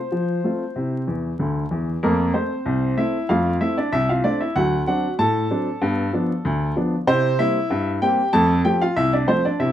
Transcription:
0.00 1.01 C5 medium
0.12 0.39 F3 medium
0.44 0.62 A3 soft
0.44 0.62 C4 soft
0.44 0.62 F4 soft
0.76 1.03 C3 medium
0.76 0.95 E4 soft
1.07 1.32 E2 medium
1.07 1.32 E3 medium
1.39 1.64 D2 medium
1.39 1.63 D3 medium
1.71 1.95 E2 medium
1.71 1.95 E3 medium
2.03 2.30 F2 medium
2.03 2.22 A3 soft
2.03 2.33 A#3 medium
2.03 2.33 A#4 medium
2.34 2.52 A3 soft
2.34 2.94 C4 soft
2.34 2.95 C5 medium
2.65 2.93 C2 medium
2.97 3.15 A3 soft
2.97 3.15 C4 medium
2.97 3.28 E4 medium
2.97 3.28 E5 medium
3.29 3.56 F2 medium
3.29 3.48 A3 soft
3.29 3.60 F4 medium
3.29 3.55 F5 medium
3.61 3.79 A3 soft
3.61 3.79 C4 soft
3.61 3.77 E4 medium
3.61 3.77 E5 medium
3.78 3.93 D4 medium
3.78 3.93 D5 medium
3.92 4.20 C2 medium
3.92 4.08 E4 medium
3.92 4.09 E5 medium
4.09 4.24 F4 medium
4.09 4.25 F5 medium
4.24 4.41 A3 soft
4.24 4.42 C4 soft
4.24 4.40 D4 medium
4.24 4.40 D5 medium
4.41 4.56 E4 medium
4.41 4.56 E5 medium
4.55 4.83 D2 medium
4.55 4.74 F#3 medium
4.55 4.86 F#4 medium
4.55 4.81 F#5 medium
4.87 5.05 F#3 soft
4.87 5.05 C4 soft
4.87 5.05 D4 medium
4.87 5.17 F#4 medium
4.87 5.13 F#5 medium
5.19 5.46 A2 medium
5.19 6.73 A4 medium
5.19 6.72 A5 medium
5.50 5.68 F#3 soft
5.50 5.68 C4 soft
5.50 5.68 D4 medium
5.82 6.08 G2 medium
5.82 6.00 B3 soft
6.13 6.30 F3 soft
6.13 6.31 B3 medium
6.13 6.31 D4 soft
6.45 6.71 D2 medium
6.76 6.93 F3 soft
6.76 6.94 B3 soft
6.76 6.94 D4 medium
7.07 7.34 C3 medium
7.07 7.37 C4 medium
7.07 7.26 E4 medium
7.07 7.37 C5 loud
7.39 7.56 G3 medium
7.39 7.57 A#3 medium
7.39 7.57 C4 medium
7.39 7.98 E4 medium
7.39 7.89 E5 loud
7.70 7.97 G2 medium
8.02 8.19 G3 soft
8.02 8.19 A#3 medium
8.02 8.20 C4 medium
8.02 8.32 G4 medium
8.02 8.32 G5 loud
8.33 8.60 F2 medium
8.33 8.52 A3 medium
8.33 8.63 A4 medium
8.33 8.58 A5 loud
8.65 8.82 F3 medium
8.65 8.83 A3 soft
8.65 8.83 C4 medium
8.65 8.80 G4 medium
8.65 8.81 G5 medium
8.82 8.96 F4 medium
8.82 8.97 F5 medium
8.97 9.23 C2 medium
8.97 9.12 E4 medium
8.97 9.12 E5 loud
9.13 9.28 D4 medium
9.13 9.29 D5 medium
9.28 9.46 F3 soft
9.28 9.46 A3 soft
9.28 9.43 C4 medium
9.28 9.44 C5 medium
9.45 9.60 D4 medium
9.45 9.60 D5 medium
9.60 9.72 C3 medium
9.60 9.72 E4 medium
9.60 9.72 E5 medium

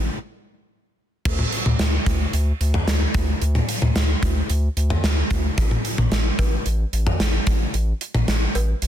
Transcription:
1.25 1.44 D2 loud
1.25 kick loud
1.25 crash loud
1.39 mid tom medium
1.52 closed hi-hat medium
1.66 1.75 D2 medium
1.66 mid tom loud
1.79 1.98 D2 loud
1.79 snare loud
1.79 closed hi-hat medium
2.06 2.25 D2 loud
2.06 kick medium
2.06 closed hi-hat medium
2.33 2.52 D2 loud
2.33 closed hi-hat medium
2.61 2.79 D2 loud
2.61 closed hi-hat medium
2.74 mid tom loud
2.88 3.06 D2 loud
2.88 snare loud
2.88 closed hi-hat medium
3.14 3.33 D2 loud
3.14 kick loud
3.14 closed hi-hat medium
3.42 3.61 D2 loud
3.42 closed hi-hat medium
3.55 mid tom medium
3.69 closed hi-hat medium
3.82 3.92 D2 loud
3.82 mid tom loud
3.96 4.15 D2 loud
3.96 snare loud
3.96 closed hi-hat medium
4.23 4.42 D2 loud
4.23 kick medium
4.23 closed hi-hat medium
4.50 4.69 D2 loud
4.50 closed hi-hat medium
4.77 4.96 D2 medium
4.77 closed hi-hat medium
4.90 mid tom loud
5.04 5.23 D2 loud
5.04 snare loud
5.04 closed hi-hat medium
5.30 5.50 D2 loud
5.30 kick medium
5.30 closed hi-hat medium
5.58 5.77 A1 loud
5.58 kick loud
5.58 closed hi-hat medium
5.71 mid tom medium
5.85 closed hi-hat medium
5.98 6.08 A1 loud
5.98 mid tom loud
6.12 6.31 A1 loud
6.12 snare loud
6.12 closed hi-hat medium
6.39 6.58 A1 loud
6.39 kick medium
6.39 closed hi-hat medium
6.39 cowbell medium
6.66 6.85 A1 loud
6.66 closed hi-hat medium
6.93 7.12 A1 medium
6.93 closed hi-hat medium
7.07 mid tom loud
7.20 7.39 A1 loud
7.20 snare loud
7.20 closed hi-hat medium
7.47 7.66 A1 loud
7.47 kick medium
7.47 closed hi-hat medium
7.74 7.93 A1 loud
7.74 closed hi-hat medium
8.01 closed hi-hat medium
8.14 8.24 A1 loud
8.14 mid tom loud
8.28 8.47 A1 loud
8.28 snare loud
8.28 closed hi-hat medium
8.55 8.74 A1 loud
8.55 closed hi-hat medium
8.55 cowbell medium
8.82 8.87 A1 loud
8.82 closed hi-hat medium

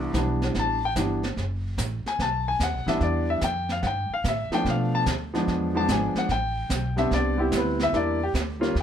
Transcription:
0.00 0.11 C2 medium
0.00 0.13 C2 medium
0.00 0.11 E3 medium
0.00 0.12 G3 medium
0.00 0.12 B3 medium
0.00 0.12 D4 medium
0.13 0.53 B1 medium
0.13 0.77 E3 medium
0.13 0.78 G3 medium
0.13 0.78 B3 medium
0.13 0.78 D4 medium
0.13 kick soft
0.13 snare medium
0.13 hi-hat pedal medium
0.42 snare soft
0.54 0.95 A1 medium
0.54 brush sweep soft
0.54 kick soft
0.54 snare soft
0.60 0.84 A5 medium
0.85 0.93 G5 medium
0.96 1.36 G1 medium
0.96 1.21 E3 medium
0.96 1.21 G3 soft
0.96 1.21 B3 soft
0.96 1.22 D4 medium
0.96 kick soft
0.96 snare medium
0.96 hi-hat pedal soft
1.23 snare soft
1.37 1.77 F#1 medium
1.37 brush sweep soft
1.37 kick soft
1.37 snare soft
1.78 2.04 A1 medium
1.78 kick soft
1.78 snare medium
1.78 hi-hat pedal medium
2.05 2.20 G#5 medium
2.05 muted upright bass stroke soft
2.05 snare soft
2.19 2.59 B1 medium
2.19 2.47 A5 medium
2.19 brush sweep soft
2.19 kick soft
2.19 snare soft
2.48 2.61 G#5 medium
2.59 2.73 D#2 medium
2.59 2.89 F#5 medium
2.59 kick soft
2.59 snare medium
2.59 hi-hat pedal medium
2.73 2.86 B1 soft
2.86 3.00 A1 medium
2.86 3.39 E3 medium
2.86 3.39 G3 medium
2.86 3.40 B3 medium
2.86 3.40 D4 medium
2.86 3.01 E5 medium
2.86 snare soft
3.00 3.41 E2 medium
3.00 3.29 D5 medium
3.00 brush sweep soft
3.00 kick soft
3.00 snare soft
3.30 3.43 E5 medium
3.41 3.82 F2 medium
3.41 3.70 G5 medium
3.41 kick soft
3.41 snare medium
3.41 hi-hat pedal medium
3.69 3.84 F5 medium
3.69 snare soft
3.83 4.09 G2 medium
3.83 3.86 F#5 medium
3.83 brush sweep soft
3.83 kick soft
3.83 snare soft
3.87 4.12 G5 medium
4.10 4.25 F5 medium
4.10 muted upright bass stroke soft
4.24 4.49 A2 medium
4.24 kick soft
4.24 snare medium
4.24 hi-hat pedal medium
4.29 4.53 E5 medium
4.50 5.04 F3 medium
4.50 5.04 A3 medium
4.50 5.04 B3 medium
4.50 5.05 D4 medium
4.50 muted upright bass stroke soft
4.50 snare soft
4.54 4.66 G5 loud
4.65 5.05 B2 medium
4.65 brush sweep soft
4.65 kick soft
4.65 snare soft
4.70 4.95 F5 medium
4.95 5.02 A5 medium
5.06 5.46 D2 medium
5.06 kick soft
5.06 snare medium
5.06 hi-hat pedal medium
5.34 5.72 F3 medium
5.34 5.73 G#3 medium
5.34 5.73 B3 medium
5.34 5.73 D4 medium
5.34 snare soft
5.47 5.87 E2 medium
5.47 brush sweep soft
5.47 kick soft
5.47 snare soft
5.75 6.27 F3 medium
5.75 6.27 G#3 medium
5.75 6.27 B3 medium
5.75 6.27 D4 medium
5.75 5.89 A5 medium
5.88 6.14 G#1 medium
5.88 6.17 G#5 medium
5.88 kick soft
5.88 snare medium
5.88 hi-hat pedal medium
6.14 6.30 F#5 medium
6.14 muted upright bass stroke soft
6.14 snare soft
6.29 6.69 A1 medium
6.29 6.95 G5 medium
6.29 brush sweep soft
6.29 kick soft
6.29 snare soft
6.70 7.10 B1 medium
6.70 kick soft
6.70 snare medium
6.70 hi-hat pedal medium
6.96 7.36 G3 medium
6.96 7.36 B3 medium
6.96 7.36 C4 medium
6.96 7.36 D4 medium
6.96 7.11 E5 medium
6.96 snare soft
7.11 7.51 C2 medium
7.11 7.40 D5 medium
7.11 brush sweep soft
7.11 kick soft
7.11 snare soft
7.37 7.90 G3 medium
7.37 7.90 B3 medium
7.37 7.91 C4 medium
7.37 7.91 E4 medium
7.37 7.53 G4 medium
7.52 7.92 D2 medium
7.52 kick soft
7.52 snare medium
7.52 hi-hat pedal medium
7.57 7.82 B4 medium
7.80 7.95 E5 loud
7.80 snare soft
7.93 8.33 E2 medium
7.93 8.18 G3 medium
7.93 8.18 A#3 medium
7.93 8.18 D4 medium
7.93 8.19 E4 medium
7.93 8.22 D5 medium
7.93 brush sweep soft
7.93 kick soft
7.93 snare soft
8.24 8.31 G4 medium
8.34 8.74 D2 medium
8.34 kick soft
8.34 snare medium
8.34 hi-hat pedal medium
8.60 8.73 G3 medium
8.60 8.73 A#3 medium
8.60 8.74 C#4 medium
8.60 8.74 F4 medium
8.60 snare soft
8.75 8.82 D#2 medium
8.75 brush sweep soft
8.75 kick soft
8.75 snare soft

